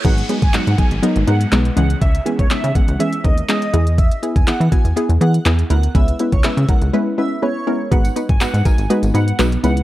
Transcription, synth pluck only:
\new Staff \with { instrumentName = "Synth pluck" } { \time 4/4 \key gis \minor \tempo 4 = 122 <fis gis b dis' gis'>8 <fis gis b dis' gis'>8 <fis gis b dis' fis'>8 <fis gis b dis' gis'>8 <fis gis b dis' ais'>8 <fis gis b dis' ais'>8 <fis gis b dis' b'>8 <e gis b cis' gis'>8~ | <e gis b cis' gis'>8 <e gis b cis' gis'>8 <e gis b cis' dis'>8 <e gis b cis' gis'>8 <e gis b cis' gis'>8 <e gis b cis' ais'>8 <e gis b cis' gis'>8 <b e' gis'>8~ | <b e' gis'>8 <b e' gis'>8 <b e' gis'>8 <b e' fis'>8 <b e' gis'>8 <b e' gis'>8 <b e' gis'>8 <b e' ais'>8 | <gis b cis' e' b'>8 <gis b cis' e' b'>8 <gis b cis' e' b'>8 <gis b cis' e' ais'>8 <gis b cis' e' b'>8 <gis b cis' e' b'>8 <gis b cis' e' b'>8 <gis b cis' e' ais'>8 |
<gis b dis' fis' b'>8 <gis b dis' fis' b'>8 <gis b dis' fis' b'>8 <gis b dis' fis' ais'>8 <gis b dis' fis' b'>8 <gis b dis' fis' b'>8 <gis b dis' fis' b'>8 <gis b cis' e' b'>8 | }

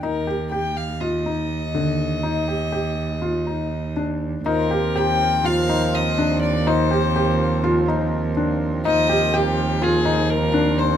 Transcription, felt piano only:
\new Staff \with { instrumentName = "Felt piano" } { \time 9/8 \key ees \major \tempo 4. = 82 ees'8 g'8 g'4 f'8 ees'4 d4 | ees'8 g'8 g'4 f'8 ees'4 d'4 | ees'8 g'8 g'4 f'8 ees'4 d'4 | ees'8 g'8 g'4 f'8 ees'4 d'4 |
ees'8 g'8 g'4 f'8 ees'4 d'4 | }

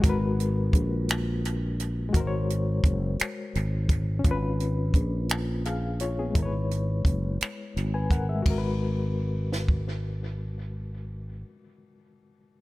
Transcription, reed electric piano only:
\new Staff \with { instrumentName = "Reed electric piano" } { \time 6/8 \key gis \minor \tempo 4. = 57 << { r2. | r2. | r2 <gis' eis''>8 <eis' cis''>16 <b gis'>16~ | <b gis'>16 r2 <b' gis''>16 <ais' fis''>16 <gis' e''>16~ |
<gis' e''>16 r2 r8. | r2. | } \\ { <gis fis' ais' b'>2. | <gis fis' ais' bis' cis''>2. | <cis' eis' b'>2 r4 | <gis e' ais' b' cis''>2. |
<gis fis' ais' b'>2.~ | <gis fis' ais' b'>2. | } >> }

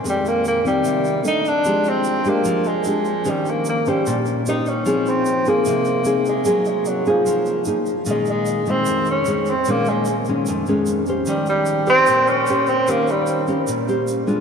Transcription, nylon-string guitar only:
\new Staff \with { instrumentName = "Nylon-string guitar" } { \time 4/4 \key bes \dorian \tempo 4 = 150 << { <ees aes c'>4. <ees c'>4. <ees a d'>8 r8 | <aes d' g'>4. <aes d' g'>4. <aes d' g'>8 r8 | <des' g' c''>4. <des' g' c''>4. <des' g' c''>8 r8 | <c' ees' aes'>4. <c' ees' aes'>4. <c' ees' aes'>8 r8 |
<bes ees' aes'>4. <bes ees' aes'>4. <bes ees' aes'>8 r8 | <ees aes des'>4. <ees aes>4. <ees aes des'>8 r8 | <ees aes des'>4 r8 <ees aes des'>4 <ees aes des'>4 <des' g' c''>8~ | <des' g' c''>4. <g' c''>4. <des' g' c''>8 r8 |
<des' g' c''>4. <des' g' c''>4 <des' g' c''>4 <aes d' f'>8 | } \\ { f,2 c4 r4 | f2 f2 | ees2 bes,2 | f2 c2 |
ges2 f2 | bes,2 f,2 | bes,2 f,2 | ees2 bes,2 |
ees2 bes,2 | } >> }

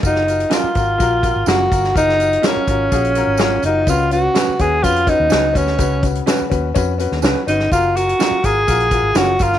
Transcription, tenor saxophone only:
\new Staff \with { instrumentName = "Tenor saxophone" } { \time 4/4 \key fis \major \tempo 4 = 125 dis'4 eis'2 fis'4 | dis'4 cis'2~ cis'8 dis'8 | eis'8 fis'4 gis'8 eis'8 dis'4 cis'8~ | cis'8 r2. dis'8 |
eis'8 fis'4 gis'4. fis'8 eis'8 | }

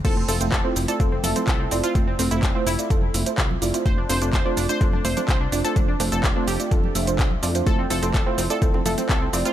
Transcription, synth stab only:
\new Staff \with { instrumentName = "Synth stab" } { \time 4/4 \key f \major \tempo 4 = 126 <a c' e' f' c''>16 r16 <a c' e' f' c''>16 <a c' e' f' c''>8 <a c' e' f' c''>8 <a c' e' f' d''>16 <a c' e' f' a'>16 r16 <a c' e' f' e''>16 <a c' e' f' c''>16 <e' f'>16 r16 <a c' e' f' d''>16 <a c' e' f' c''>16 | <a c' e' f' c''>16 r16 <a c' e' f' c''>16 <a c' e' f' c''>8 <a c' e' f' c''>8 <a c' e' f' d''>16 <a c' e' f' a'>16 r16 <a c' e' f' e''>16 <a c' e' f' c''>16 <e' f'>16 r16 <a c' e' f' d''>16 <a c' e' f' c''>16 | <a c' d' f' c''>16 r16 <a c' d' f' c''>16 <a c' d' f' c''>8 <a c' d' f' c''>8 <a c' d' f' d''>16 <a c' d' f' a'>16 r16 <a c' d' f' e''>16 <a c' d' f' c''>16 f'16 r16 <a c' d' f' d''>16 <a c' d' f' c''>16 | <a c' d' f' c''>16 r16 <a c' d' f' c''>16 <a c' d' f' c''>8 <a c' d' f' c''>8 <a c' d' f' d''>16 <a c' d' f' a'>16 r16 <a c' d' f' e''>16 <a c' d' f' c''>16 <a c' d'>16 r16 <a c' d' f' d''>16 <a c' d' f' c''>16 |
<a c' e' f' c''>16 r16 <a c' e' f' c''>16 <a c' e' f' c''>8 <a c' e' f' c''>8 <a c' e' f' d''>16 <a c' e' f' a'>16 r16 <a c' e' f' e''>16 <a c' e' f' c''>16 <a c' e' f' c''>16 r16 <a c' e' f' d''>16 <a c' e' f' c''>16 | }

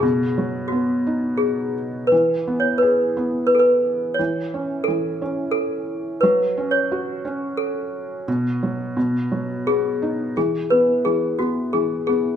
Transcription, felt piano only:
\new Staff \with { instrumentName = "Felt piano" } { \time 3/4 \key e \major \tempo 4 = 87 b,8 fis8 b8 dis'4. | e8 b8 gis'8 b4. | e8 cis'8 e8 cis'4. | fis8 cis'8 fis'8 cis'4. |
b,8 fis8 b,8 fis8 b8 dis'8 | e8 b8 e8 b8 e8 b8 | }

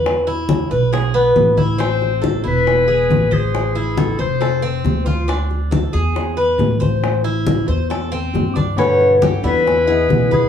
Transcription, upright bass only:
\new Staff \with { instrumentName = "Upright bass" } { \clef bass \time 4/4 \key e \phrygian \tempo 4 = 137 e,4. b,,4. a,,4~ | a,,4. e,,4. a,,4~ | a,,4. f,,4. d,4~ | d,4. e,4. a,,4~ |
a,,4. e,4. g,4~ | g,4. e,4. b,,4 | }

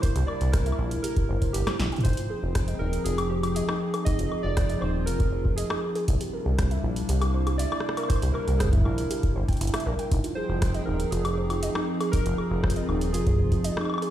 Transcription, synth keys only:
\new Staff \with { instrumentName = "Synth keys" } { \time 4/4 \key f \dorian \tempo 4 = 119 c''8 d''8 bes'4 bes'4 g'8. r16 | c''4. bes'8 aes'8 g'8 aes'4 | ees''8. d''8. c''8 bes'4 aes'8. r16 | r2. d''4 |
c''8 bes'8 aes'8 bes'4 r4. | r8 c''4 bes'8 aes'4. r8 | bes'2 aes'4. r8 | }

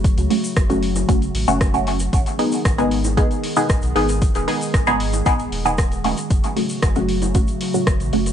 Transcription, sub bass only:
\new Staff \with { instrumentName = "Sub bass" } { \clef bass \time 4/4 \key gis \phrygian \tempo 4 = 115 fis,,16 cis,16 r8 fis,,4 fis,,8 a,,16 fis,,4~ fis,,16 | gis,,16 r8. gis,,4~ gis,,16 r8. gis,,16 b,,16 gis,,8~ | gis,,16 dis,,16 r8 gis,,4 gis,,8 dis,,4~ dis,,16 r16 | fis,,16 r8. fis,,4~ fis,,16 r8. fis,,16 a,,16 fis,,8 | }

